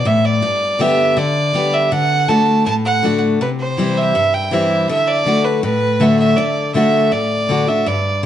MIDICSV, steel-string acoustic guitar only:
0, 0, Header, 1, 2, 480
1, 0, Start_track
1, 0, Tempo, 371978
1, 552, Time_signature, 4, 2, 24, 8
1, 10654, End_track
2, 0, Start_track
2, 0, Title_t, "Steel-string acoustic guitar"
2, 0, Program_c, 0, 25
2, 68, Note_on_c, 0, 45, 91
2, 525, Note_off_c, 0, 45, 0
2, 546, Note_on_c, 0, 43, 95
2, 1018, Note_on_c, 0, 50, 88
2, 1029, Note_on_c, 0, 55, 96
2, 1040, Note_on_c, 0, 59, 94
2, 1047, Note_on_c, 0, 67, 111
2, 1460, Note_off_c, 0, 43, 0
2, 1480, Note_off_c, 0, 50, 0
2, 1486, Note_off_c, 0, 55, 0
2, 1491, Note_off_c, 0, 59, 0
2, 1495, Note_off_c, 0, 67, 0
2, 1505, Note_on_c, 0, 50, 95
2, 1965, Note_off_c, 0, 50, 0
2, 1980, Note_on_c, 0, 50, 85
2, 1992, Note_on_c, 0, 55, 93
2, 2001, Note_on_c, 0, 59, 90
2, 2008, Note_on_c, 0, 67, 100
2, 2441, Note_off_c, 0, 50, 0
2, 2447, Note_off_c, 0, 55, 0
2, 2452, Note_off_c, 0, 59, 0
2, 2455, Note_off_c, 0, 67, 0
2, 2475, Note_on_c, 0, 50, 98
2, 2927, Note_off_c, 0, 50, 0
2, 2943, Note_on_c, 0, 50, 90
2, 2955, Note_on_c, 0, 57, 93
2, 2965, Note_on_c, 0, 62, 99
2, 2973, Note_on_c, 0, 66, 96
2, 3402, Note_off_c, 0, 50, 0
2, 3408, Note_off_c, 0, 57, 0
2, 3413, Note_off_c, 0, 62, 0
2, 3417, Note_off_c, 0, 66, 0
2, 3438, Note_on_c, 0, 45, 105
2, 3906, Note_on_c, 0, 50, 92
2, 3920, Note_on_c, 0, 57, 93
2, 3927, Note_on_c, 0, 62, 96
2, 3939, Note_on_c, 0, 66, 106
2, 4346, Note_off_c, 0, 45, 0
2, 4364, Note_off_c, 0, 50, 0
2, 4371, Note_off_c, 0, 57, 0
2, 4375, Note_off_c, 0, 62, 0
2, 4381, Note_off_c, 0, 66, 0
2, 4400, Note_on_c, 0, 48, 87
2, 4870, Note_on_c, 0, 52, 83
2, 4882, Note_on_c, 0, 55, 88
2, 4890, Note_on_c, 0, 60, 102
2, 4900, Note_on_c, 0, 64, 91
2, 5307, Note_off_c, 0, 48, 0
2, 5326, Note_off_c, 0, 52, 0
2, 5332, Note_off_c, 0, 55, 0
2, 5336, Note_off_c, 0, 60, 0
2, 5341, Note_off_c, 0, 64, 0
2, 5354, Note_on_c, 0, 43, 99
2, 5823, Note_on_c, 0, 52, 95
2, 5837, Note_on_c, 0, 55, 93
2, 5845, Note_on_c, 0, 60, 113
2, 5854, Note_on_c, 0, 64, 94
2, 6265, Note_off_c, 0, 43, 0
2, 6283, Note_off_c, 0, 52, 0
2, 6290, Note_off_c, 0, 55, 0
2, 6294, Note_off_c, 0, 60, 0
2, 6298, Note_off_c, 0, 64, 0
2, 6315, Note_on_c, 0, 50, 98
2, 6764, Note_off_c, 0, 50, 0
2, 6779, Note_on_c, 0, 50, 86
2, 6793, Note_on_c, 0, 57, 93
2, 6801, Note_on_c, 0, 62, 99
2, 6810, Note_on_c, 0, 66, 91
2, 7241, Note_off_c, 0, 50, 0
2, 7248, Note_off_c, 0, 57, 0
2, 7252, Note_off_c, 0, 62, 0
2, 7257, Note_off_c, 0, 66, 0
2, 7265, Note_on_c, 0, 45, 106
2, 7739, Note_on_c, 0, 50, 89
2, 7750, Note_on_c, 0, 57, 102
2, 7758, Note_on_c, 0, 62, 85
2, 7770, Note_on_c, 0, 66, 98
2, 8180, Note_off_c, 0, 45, 0
2, 8202, Note_off_c, 0, 50, 0
2, 8207, Note_off_c, 0, 57, 0
2, 8211, Note_off_c, 0, 62, 0
2, 8217, Note_off_c, 0, 66, 0
2, 8230, Note_on_c, 0, 50, 98
2, 8685, Note_off_c, 0, 50, 0
2, 8700, Note_on_c, 0, 50, 95
2, 8711, Note_on_c, 0, 57, 99
2, 8722, Note_on_c, 0, 62, 88
2, 8732, Note_on_c, 0, 66, 106
2, 9162, Note_off_c, 0, 50, 0
2, 9168, Note_off_c, 0, 57, 0
2, 9173, Note_off_c, 0, 62, 0
2, 9178, Note_off_c, 0, 66, 0
2, 9185, Note_on_c, 0, 45, 92
2, 9661, Note_on_c, 0, 50, 88
2, 9673, Note_on_c, 0, 57, 82
2, 9682, Note_on_c, 0, 62, 99
2, 9693, Note_on_c, 0, 66, 100
2, 9882, Note_off_c, 0, 66, 0
2, 9897, Note_off_c, 0, 50, 0
2, 9898, Note_on_c, 0, 66, 61
2, 9903, Note_off_c, 0, 57, 0
2, 9907, Note_off_c, 0, 62, 0
2, 9929, Note_on_c, 0, 62, 46
2, 10101, Note_off_c, 0, 45, 0
2, 10136, Note_off_c, 0, 66, 0
2, 10147, Note_on_c, 0, 43, 91
2, 10151, Note_off_c, 0, 62, 0
2, 10654, Note_off_c, 0, 43, 0
2, 10654, End_track
0, 0, End_of_file